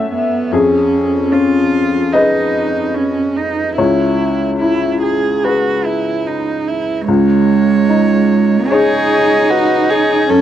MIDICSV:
0, 0, Header, 1, 5, 480
1, 0, Start_track
1, 0, Tempo, 791557
1, 318, Time_signature, 4, 2, 24, 8
1, 799, Tempo, 820793
1, 5119, Tempo, 792602
1, 6155, End_track
2, 0, Start_track
2, 0, Title_t, "Viola"
2, 0, Program_c, 0, 41
2, 4163, Note_on_c, 0, 73, 41
2, 5097, Note_off_c, 0, 73, 0
2, 5117, Note_on_c, 0, 73, 42
2, 5595, Note_on_c, 0, 71, 45
2, 5604, Note_off_c, 0, 73, 0
2, 5841, Note_on_c, 0, 73, 38
2, 5850, Note_off_c, 0, 71, 0
2, 6077, Note_off_c, 0, 73, 0
2, 6081, Note_on_c, 0, 73, 43
2, 6155, Note_off_c, 0, 73, 0
2, 6155, End_track
3, 0, Start_track
3, 0, Title_t, "Upright piano"
3, 0, Program_c, 1, 0
3, 0, Control_c, 1, 64, 127
3, 0, Note_on_c, 1, 42, 39
3, 0, Note_on_c, 1, 61, 35
3, 0, Note_on_c, 1, 69, 34
3, 0, Note_on_c, 1, 73, 36
3, 0, Note_on_c, 1, 76, 48
3, 0, Note_on_c, 1, 78, 56
3, 0, Note_on_c, 1, 80, 52
3, 293, Note_off_c, 1, 42, 0
3, 293, Note_off_c, 1, 69, 0
3, 293, Note_off_c, 1, 76, 0
3, 295, Note_off_c, 1, 73, 0
3, 317, Note_on_c, 1, 41, 38
3, 324, Note_on_c, 1, 68, 49
3, 330, Note_off_c, 1, 80, 0
3, 330, Control_c, 1, 64, 0
3, 331, Note_off_c, 1, 61, 0
3, 333, Note_off_c, 1, 78, 0
3, 435, Control_c, 1, 64, 127
3, 800, Note_on_c, 1, 61, 33
3, 1259, Note_off_c, 1, 68, 0
3, 1277, Note_on_c, 1, 75, 61
3, 1281, Note_on_c, 1, 68, 27
3, 1286, Note_on_c, 1, 71, 32
3, 1565, Note_off_c, 1, 61, 0
3, 2212, Note_off_c, 1, 75, 0
3, 2213, Note_off_c, 1, 41, 0
3, 2214, Note_off_c, 1, 68, 0
3, 2216, Note_off_c, 1, 71, 0
3, 2238, Note_on_c, 1, 37, 35
3, 2240, Note_on_c, 1, 73, 41
3, 2249, Control_c, 1, 64, 0
3, 2351, Control_c, 1, 64, 127
3, 2728, Note_on_c, 1, 64, 29
3, 3211, Note_on_c, 1, 68, 25
3, 3214, Note_on_c, 1, 71, 27
3, 3499, Note_off_c, 1, 64, 0
3, 3665, Note_off_c, 1, 73, 0
3, 4143, Note_off_c, 1, 37, 0
3, 4144, Note_off_c, 1, 68, 0
3, 4146, Note_off_c, 1, 71, 0
3, 4169, Note_on_c, 1, 37, 37
3, 4178, Control_c, 1, 64, 0
3, 4270, Control_c, 1, 64, 127
3, 4644, Note_on_c, 1, 63, 33
3, 5122, Note_on_c, 1, 68, 34
3, 5128, Note_on_c, 1, 73, 38
3, 5413, Note_off_c, 1, 63, 0
3, 6058, Note_off_c, 1, 68, 0
3, 6059, Note_off_c, 1, 37, 0
3, 6060, Note_off_c, 1, 73, 0
3, 6082, Note_on_c, 1, 42, 38
3, 6093, Control_c, 1, 64, 0
3, 6155, Note_off_c, 1, 42, 0
3, 6155, End_track
4, 0, Start_track
4, 0, Title_t, "Violin"
4, 0, Program_c, 2, 40
4, 5118, Note_on_c, 2, 68, 39
4, 5602, Note_on_c, 2, 66, 46
4, 5611, Note_off_c, 2, 68, 0
4, 5840, Note_on_c, 2, 68, 42
4, 5849, Note_off_c, 2, 66, 0
4, 6078, Note_on_c, 2, 69, 46
4, 6087, Note_off_c, 2, 68, 0
4, 6155, Note_off_c, 2, 69, 0
4, 6155, End_track
5, 0, Start_track
5, 0, Title_t, "Cello"
5, 0, Program_c, 3, 42
5, 0, Note_on_c, 3, 57, 36
5, 73, Note_off_c, 3, 57, 0
5, 78, Note_on_c, 3, 59, 41
5, 314, Note_on_c, 3, 61, 48
5, 323, Note_off_c, 3, 59, 0
5, 797, Note_on_c, 3, 65, 50
5, 806, Note_off_c, 3, 61, 0
5, 1274, Note_on_c, 3, 63, 42
5, 1283, Note_off_c, 3, 65, 0
5, 1751, Note_on_c, 3, 61, 37
5, 1760, Note_off_c, 3, 63, 0
5, 1995, Note_on_c, 3, 63, 38
5, 2004, Note_off_c, 3, 61, 0
5, 2225, Note_off_c, 3, 63, 0
5, 2229, Note_on_c, 3, 64, 38
5, 2660, Note_off_c, 3, 64, 0
5, 2715, Note_on_c, 3, 64, 42
5, 2945, Note_off_c, 3, 64, 0
5, 2965, Note_on_c, 3, 68, 42
5, 3211, Note_on_c, 3, 66, 44
5, 3220, Note_off_c, 3, 68, 0
5, 3447, Note_on_c, 3, 64, 40
5, 3456, Note_off_c, 3, 66, 0
5, 3694, Note_on_c, 3, 63, 36
5, 3703, Note_off_c, 3, 64, 0
5, 3936, Note_on_c, 3, 64, 36
5, 3944, Note_off_c, 3, 63, 0
5, 4170, Note_off_c, 3, 64, 0
5, 4176, Note_on_c, 3, 56, 59
5, 5124, Note_on_c, 3, 63, 67
5, 5133, Note_off_c, 3, 56, 0
5, 6078, Note_off_c, 3, 63, 0
5, 6082, Note_on_c, 3, 61, 59
5, 6155, Note_off_c, 3, 61, 0
5, 6155, End_track
0, 0, End_of_file